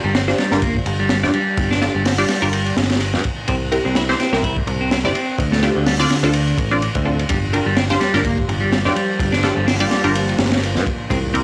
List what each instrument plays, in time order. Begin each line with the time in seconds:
0.04 picked electric bass G1, clean electric guitar G3
0.15 clean electric guitar C4, snare, ride
0.28 synth stab D4 F4 G4 C5, snare
0.38 clean electric guitar G3, snare, ride
0.51 picked electric bass G1, synth stab D4 F4 G4 A#4, snare
0.62 clean electric guitar A#3, kick, ride
0.75 kick
0.86 picked electric bass G1, ride
1.00 clean electric guitar G3
1.09 clean electric guitar G3, snare, ride
1.23 picked electric bass G2, synth stab D4 F4 G4 D5, snare
1.34 clean electric guitar G3, ride
1.57 picked electric bass G1, kick, ride
1.71 clean electric guitar D4, snare
1.81 synth stab D4 F4 G4 A4, snare, ride
1.94 picked electric bass G1, clean electric guitar G3
2.05 clean electric guitar C4, snare, open hi-hat
2.18 clean electric guitar G3, synth stab D4 F4 G4 D5
2.29 clean electric guitar G3, snare, ride
2.42 picked electric bass G1, synth stab D4 F4 G4 A#4
2.53 ride
2.66 ride
2.77 picked electric bass G1, snare, ride
2.83 snare, ride
2.90 snare, ride
2.95 snare, ride
3.00 ride
3.14 picked electric bass G2, snare
3.24 kick, ride
3.48 picked electric bass C2, clean electric guitar C4, kick, ride
3.72 synth stab C4 E4 G4 A#4, ride
3.85 picked electric bass C2, clean electric guitar C4
3.95 clean electric guitar E4, snare, ride
4.09 synth stab C4 E4 G4 C5, snare
4.20 clean electric guitar C4, snare, ride
4.33 picked electric bass C2, synth stab C4 E4 G4 A#4, snare
4.43 clean electric guitar E4, kick, ride
4.56 kick
4.67 picked electric bass C2, ride
4.81 clean electric guitar C4
4.91 clean electric guitar C4, snare, ride
5.04 picked electric bass G1, synth stab C4 E4 G4 D5, snare
5.15 clean electric guitar C4, ride
5.38 picked electric bass D2, kick, ride
5.52 clean electric guitar A3, snare
5.62 synth stab C4 D4 F4 G4, snare, ride
5.75 picked electric bass D2, clean electric guitar D3
5.86 clean electric guitar G3, snare, open hi-hat
5.99 clean electric guitar D3, synth stab C4 D4 F4 D5
6.10 clean electric guitar D3, snare, ride
6.23 picked electric bass D2, synth stab C4 D4 F4 A4
6.33 ride
6.48 ride
6.58 picked electric bass A1, kick, ride
6.71 synth stab C4 D4 F4 D5
6.82 ride
6.95 picked electric bass D2, kick, ride
7.05 synth stab C4 D4 F4 A4
7.19 ride
7.29 picked electric bass G1, ambient pad F3 A#3 G4, clean electric guitar G3, kick, ride, high conga
7.43 high conga
7.53 synth stab D4 F4 G4 A#4, ride, low conga
7.66 picked electric bass G1, clean electric guitar G3
7.77 clean electric guitar C4, snare, ride
7.90 synth stab D4 F4 G4 C5, snare, muted conga, high conga
8.00 clean electric guitar G3, snare, ride, muted conga
8.14 picked electric bass G1, synth stab D4 F4 G4 A#4, snare
8.24 clean electric guitar A#3, kick, ride
8.38 kick, muted conga
8.49 picked electric bass G1, ride
8.61 clean electric guitar G3, high conga
8.71 clean electric guitar G3, snare, ride
8.85 picked electric bass G2, synth stab D4 F4 G4 D5, snare
8.96 clean electric guitar G3, ride
9.19 picked electric bass G1, ambient pad F4, kick, ride, high conga
9.32 clean electric guitar D4, snare, high conga
9.43 synth stab D4 F4 G4 A4, snare, ride, low conga
9.56 picked electric bass G1, clean electric guitar G3
9.67 clean electric guitar C4, snare, open hi-hat
9.79 clean electric guitar G3, synth stab D4 F4 G4 D5, muted conga
9.91 clean electric guitar G3, snare, ride, muted conga
10.04 picked electric bass G1, synth stab D4 F4 G4 A#4
10.15 ride
10.29 ride
10.38 picked electric bass G1, snare, ride
10.46 snare, ride
10.51 snare, ride
10.57 snare, ride
10.63 ride
10.75 picked electric bass G2, snare
10.86 kick, ride
11.10 picked electric bass C2, ambient pad C3 E4, clean electric guitar C4, kick, ride, high conga
11.23 high conga
11.33 synth stab C4 E4 G4 A#4, ride, low conga